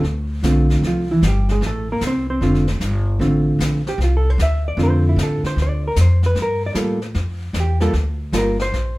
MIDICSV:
0, 0, Header, 1, 5, 480
1, 0, Start_track
1, 0, Key_signature, -1, "minor"
1, 0, Tempo, 394477
1, 56, Time_signature, 4, 2, 24, 8
1, 10929, End_track
2, 0, Start_track
2, 0, Title_t, "Hollow-body jazz guitar"
2, 0, Program_c, 0, 26
2, 533, Note_on_c, 0, 50, 63
2, 540, Note_on_c, 0, 60, 67
2, 541, Note_on_c, 0, 57, 62
2, 550, Note_on_c, 0, 65, 73
2, 1044, Note_off_c, 0, 65, 0
2, 1059, Note_on_c, 0, 65, 68
2, 1068, Note_off_c, 0, 50, 0
2, 1073, Note_on_c, 0, 53, 47
2, 1274, Note_off_c, 0, 60, 0
2, 1275, Note_off_c, 0, 57, 0
2, 1348, Note_off_c, 0, 65, 0
2, 1355, Note_off_c, 0, 53, 0
2, 1355, Note_on_c, 0, 64, 73
2, 1365, Note_on_c, 0, 52, 63
2, 1502, Note_off_c, 0, 64, 0
2, 1508, Note_off_c, 0, 52, 0
2, 1548, Note_on_c, 0, 55, 50
2, 1550, Note_on_c, 0, 67, 67
2, 1833, Note_off_c, 0, 55, 0
2, 1833, Note_off_c, 0, 67, 0
2, 1841, Note_on_c, 0, 68, 82
2, 1850, Note_on_c, 0, 56, 67
2, 1986, Note_off_c, 0, 68, 0
2, 1990, Note_off_c, 0, 56, 0
2, 2020, Note_on_c, 0, 57, 55
2, 2026, Note_on_c, 0, 69, 69
2, 2309, Note_off_c, 0, 57, 0
2, 2312, Note_off_c, 0, 69, 0
2, 2337, Note_on_c, 0, 70, 82
2, 2339, Note_on_c, 0, 58, 73
2, 2474, Note_off_c, 0, 70, 0
2, 2475, Note_off_c, 0, 58, 0
2, 2516, Note_on_c, 0, 60, 62
2, 2522, Note_on_c, 0, 72, 73
2, 2784, Note_off_c, 0, 72, 0
2, 2788, Note_off_c, 0, 60, 0
2, 2800, Note_on_c, 0, 72, 73
2, 2801, Note_on_c, 0, 60, 61
2, 2938, Note_off_c, 0, 60, 0
2, 2939, Note_on_c, 0, 50, 61
2, 2943, Note_on_c, 0, 57, 62
2, 2953, Note_on_c, 0, 60, 59
2, 2955, Note_on_c, 0, 65, 66
2, 3225, Note_off_c, 0, 50, 0
2, 3227, Note_off_c, 0, 57, 0
2, 3232, Note_off_c, 0, 60, 0
2, 3233, Note_off_c, 0, 65, 0
2, 3385, Note_off_c, 0, 72, 0
2, 3892, Note_on_c, 0, 57, 51
2, 3895, Note_on_c, 0, 50, 58
2, 3900, Note_on_c, 0, 60, 59
2, 3905, Note_on_c, 0, 65, 59
2, 4630, Note_off_c, 0, 57, 0
2, 4631, Note_off_c, 0, 50, 0
2, 4634, Note_off_c, 0, 60, 0
2, 4636, Note_off_c, 0, 65, 0
2, 4728, Note_on_c, 0, 67, 83
2, 4869, Note_off_c, 0, 67, 0
2, 4913, Note_on_c, 0, 65, 68
2, 5041, Note_off_c, 0, 65, 0
2, 5071, Note_on_c, 0, 69, 75
2, 5232, Note_off_c, 0, 69, 0
2, 5232, Note_on_c, 0, 72, 74
2, 5361, Note_off_c, 0, 72, 0
2, 5383, Note_on_c, 0, 76, 93
2, 5670, Note_off_c, 0, 76, 0
2, 5694, Note_on_c, 0, 74, 90
2, 5812, Note_on_c, 0, 50, 53
2, 5816, Note_on_c, 0, 57, 50
2, 5817, Note_on_c, 0, 60, 52
2, 5826, Note_on_c, 0, 65, 61
2, 5832, Note_off_c, 0, 74, 0
2, 5880, Note_on_c, 0, 72, 79
2, 6159, Note_off_c, 0, 72, 0
2, 6191, Note_on_c, 0, 64, 53
2, 6321, Note_off_c, 0, 64, 0
2, 6362, Note_on_c, 0, 69, 71
2, 6639, Note_off_c, 0, 69, 0
2, 6650, Note_on_c, 0, 72, 82
2, 6790, Note_off_c, 0, 72, 0
2, 6842, Note_on_c, 0, 74, 82
2, 7119, Note_off_c, 0, 74, 0
2, 7149, Note_on_c, 0, 70, 74
2, 7157, Note_off_c, 0, 50, 0
2, 7159, Note_off_c, 0, 57, 0
2, 7160, Note_off_c, 0, 60, 0
2, 7164, Note_off_c, 0, 65, 0
2, 7280, Note_off_c, 0, 70, 0
2, 7316, Note_on_c, 0, 72, 69
2, 7596, Note_off_c, 0, 72, 0
2, 7621, Note_on_c, 0, 71, 84
2, 7755, Note_off_c, 0, 71, 0
2, 7815, Note_on_c, 0, 70, 83
2, 8086, Note_off_c, 0, 70, 0
2, 8109, Note_on_c, 0, 74, 91
2, 8190, Note_off_c, 0, 74, 0
2, 8207, Note_on_c, 0, 55, 51
2, 8214, Note_on_c, 0, 58, 52
2, 8219, Note_on_c, 0, 69, 57
2, 8220, Note_on_c, 0, 65, 54
2, 8499, Note_off_c, 0, 55, 0
2, 8502, Note_off_c, 0, 58, 0
2, 8505, Note_off_c, 0, 65, 0
2, 8505, Note_off_c, 0, 69, 0
2, 9248, Note_on_c, 0, 67, 66
2, 9497, Note_on_c, 0, 55, 65
2, 9501, Note_on_c, 0, 58, 64
2, 9508, Note_off_c, 0, 67, 0
2, 9511, Note_on_c, 0, 65, 75
2, 9513, Note_on_c, 0, 69, 79
2, 9642, Note_off_c, 0, 55, 0
2, 9644, Note_off_c, 0, 58, 0
2, 9649, Note_off_c, 0, 65, 0
2, 9650, Note_off_c, 0, 69, 0
2, 10132, Note_on_c, 0, 55, 59
2, 10141, Note_on_c, 0, 58, 58
2, 10145, Note_on_c, 0, 65, 72
2, 10147, Note_on_c, 0, 69, 71
2, 10194, Note_off_c, 0, 69, 0
2, 10198, Note_on_c, 0, 70, 68
2, 10422, Note_off_c, 0, 55, 0
2, 10426, Note_off_c, 0, 58, 0
2, 10429, Note_off_c, 0, 65, 0
2, 10479, Note_off_c, 0, 70, 0
2, 10486, Note_on_c, 0, 72, 108
2, 10920, Note_off_c, 0, 72, 0
2, 10929, End_track
3, 0, Start_track
3, 0, Title_t, "Upright bass"
3, 0, Program_c, 1, 32
3, 40, Note_on_c, 1, 38, 80
3, 510, Note_off_c, 1, 38, 0
3, 518, Note_on_c, 1, 35, 74
3, 987, Note_off_c, 1, 35, 0
3, 994, Note_on_c, 1, 36, 68
3, 1471, Note_off_c, 1, 36, 0
3, 1482, Note_on_c, 1, 31, 79
3, 1951, Note_off_c, 1, 31, 0
3, 1958, Note_on_c, 1, 33, 79
3, 2431, Note_off_c, 1, 33, 0
3, 2438, Note_on_c, 1, 36, 72
3, 2914, Note_off_c, 1, 36, 0
3, 2930, Note_on_c, 1, 29, 70
3, 3399, Note_off_c, 1, 29, 0
3, 3407, Note_on_c, 1, 31, 75
3, 3878, Note_off_c, 1, 31, 0
3, 3885, Note_on_c, 1, 33, 81
3, 4357, Note_off_c, 1, 33, 0
3, 4366, Note_on_c, 1, 34, 77
3, 4834, Note_off_c, 1, 34, 0
3, 4842, Note_on_c, 1, 36, 82
3, 5315, Note_off_c, 1, 36, 0
3, 5329, Note_on_c, 1, 38, 81
3, 5795, Note_off_c, 1, 38, 0
3, 5802, Note_on_c, 1, 41, 86
3, 6275, Note_off_c, 1, 41, 0
3, 6281, Note_on_c, 1, 45, 80
3, 6585, Note_off_c, 1, 45, 0
3, 6765, Note_on_c, 1, 38, 77
3, 7236, Note_off_c, 1, 38, 0
3, 7255, Note_on_c, 1, 41, 75
3, 7717, Note_off_c, 1, 41, 0
3, 7724, Note_on_c, 1, 43, 77
3, 8196, Note_off_c, 1, 43, 0
3, 8209, Note_on_c, 1, 45, 77
3, 8679, Note_off_c, 1, 45, 0
3, 8695, Note_on_c, 1, 41, 74
3, 9159, Note_off_c, 1, 41, 0
3, 9167, Note_on_c, 1, 40, 78
3, 9638, Note_off_c, 1, 40, 0
3, 9653, Note_on_c, 1, 38, 87
3, 10121, Note_off_c, 1, 38, 0
3, 10127, Note_on_c, 1, 31, 68
3, 10598, Note_off_c, 1, 31, 0
3, 10610, Note_on_c, 1, 34, 75
3, 10929, Note_off_c, 1, 34, 0
3, 10929, End_track
4, 0, Start_track
4, 0, Title_t, "Muted upright bass strokes"
4, 6605, Note_on_c, 9, 29, 42
4, 6727, Note_off_c, 9, 29, 0
4, 10929, End_track
5, 0, Start_track
5, 0, Title_t, "Drums"
5, 50, Note_on_c, 9, 25, 45
5, 50, Note_on_c, 9, 38, 37
5, 172, Note_off_c, 9, 38, 0
5, 526, Note_on_c, 9, 44, 51
5, 530, Note_on_c, 9, 38, 54
5, 648, Note_off_c, 9, 44, 0
5, 652, Note_off_c, 9, 38, 0
5, 849, Note_on_c, 9, 38, 37
5, 971, Note_off_c, 9, 38, 0
5, 1012, Note_off_c, 9, 25, 0
5, 1012, Note_on_c, 9, 25, 42
5, 1012, Note_on_c, 9, 38, 38
5, 1134, Note_off_c, 9, 38, 0
5, 1488, Note_on_c, 9, 44, 52
5, 1492, Note_on_c, 9, 38, 59
5, 1610, Note_off_c, 9, 44, 0
5, 1614, Note_off_c, 9, 38, 0
5, 1810, Note_on_c, 9, 38, 37
5, 1931, Note_off_c, 9, 38, 0
5, 1968, Note_off_c, 9, 25, 0
5, 1968, Note_on_c, 9, 25, 37
5, 1968, Note_on_c, 9, 38, 36
5, 2090, Note_off_c, 9, 38, 0
5, 2445, Note_on_c, 9, 44, 50
5, 2449, Note_on_c, 9, 38, 56
5, 2567, Note_off_c, 9, 44, 0
5, 2570, Note_off_c, 9, 38, 0
5, 2940, Note_off_c, 9, 25, 0
5, 2940, Note_on_c, 9, 25, 42
5, 2940, Note_on_c, 9, 38, 37
5, 3061, Note_off_c, 9, 38, 0
5, 3100, Note_on_c, 9, 38, 29
5, 3222, Note_off_c, 9, 38, 0
5, 3254, Note_on_c, 9, 38, 42
5, 3376, Note_off_c, 9, 38, 0
5, 3413, Note_on_c, 9, 44, 50
5, 3417, Note_on_c, 9, 38, 53
5, 3535, Note_off_c, 9, 44, 0
5, 3538, Note_off_c, 9, 38, 0
5, 3902, Note_off_c, 9, 25, 0
5, 3902, Note_on_c, 9, 25, 38
5, 3902, Note_on_c, 9, 38, 37
5, 4024, Note_off_c, 9, 38, 0
5, 4382, Note_on_c, 9, 44, 62
5, 4386, Note_on_c, 9, 38, 61
5, 4504, Note_off_c, 9, 44, 0
5, 4507, Note_off_c, 9, 38, 0
5, 4707, Note_on_c, 9, 38, 52
5, 4829, Note_off_c, 9, 38, 0
5, 4872, Note_off_c, 9, 25, 0
5, 4872, Note_on_c, 9, 25, 44
5, 4872, Note_on_c, 9, 38, 39
5, 4994, Note_off_c, 9, 38, 0
5, 5342, Note_on_c, 9, 44, 46
5, 5346, Note_on_c, 9, 38, 59
5, 5464, Note_off_c, 9, 44, 0
5, 5468, Note_off_c, 9, 38, 0
5, 5825, Note_off_c, 9, 25, 0
5, 5825, Note_on_c, 9, 25, 44
5, 5825, Note_on_c, 9, 38, 40
5, 5947, Note_off_c, 9, 38, 0
5, 6306, Note_on_c, 9, 44, 49
5, 6309, Note_on_c, 9, 38, 61
5, 6427, Note_off_c, 9, 44, 0
5, 6431, Note_off_c, 9, 38, 0
5, 6623, Note_on_c, 9, 38, 36
5, 6745, Note_off_c, 9, 38, 0
5, 6787, Note_off_c, 9, 25, 0
5, 6787, Note_on_c, 9, 25, 33
5, 6787, Note_on_c, 9, 38, 37
5, 6908, Note_off_c, 9, 38, 0
5, 7252, Note_on_c, 9, 44, 56
5, 7256, Note_on_c, 9, 38, 56
5, 7374, Note_off_c, 9, 44, 0
5, 7378, Note_off_c, 9, 38, 0
5, 7576, Note_on_c, 9, 38, 39
5, 7698, Note_off_c, 9, 38, 0
5, 7733, Note_off_c, 9, 25, 0
5, 7733, Note_on_c, 9, 25, 42
5, 7733, Note_on_c, 9, 38, 36
5, 7854, Note_off_c, 9, 38, 0
5, 8212, Note_on_c, 9, 44, 55
5, 8216, Note_on_c, 9, 38, 62
5, 8334, Note_off_c, 9, 44, 0
5, 8338, Note_off_c, 9, 38, 0
5, 8537, Note_on_c, 9, 38, 38
5, 8658, Note_off_c, 9, 38, 0
5, 8693, Note_off_c, 9, 25, 0
5, 8693, Note_on_c, 9, 25, 39
5, 8693, Note_on_c, 9, 38, 36
5, 8815, Note_off_c, 9, 38, 0
5, 9171, Note_on_c, 9, 44, 48
5, 9174, Note_on_c, 9, 38, 61
5, 9292, Note_off_c, 9, 44, 0
5, 9296, Note_off_c, 9, 38, 0
5, 9493, Note_on_c, 9, 38, 36
5, 9615, Note_off_c, 9, 38, 0
5, 9654, Note_off_c, 9, 25, 0
5, 9654, Note_on_c, 9, 25, 38
5, 9654, Note_on_c, 9, 38, 39
5, 9776, Note_off_c, 9, 38, 0
5, 10135, Note_on_c, 9, 44, 62
5, 10139, Note_on_c, 9, 38, 60
5, 10257, Note_off_c, 9, 44, 0
5, 10260, Note_off_c, 9, 38, 0
5, 10457, Note_on_c, 9, 38, 47
5, 10579, Note_off_c, 9, 38, 0
5, 10627, Note_off_c, 9, 25, 0
5, 10627, Note_on_c, 9, 25, 46
5, 10627, Note_on_c, 9, 38, 37
5, 10748, Note_off_c, 9, 38, 0
5, 10929, Note_off_c, 9, 25, 0
5, 10929, End_track
0, 0, End_of_file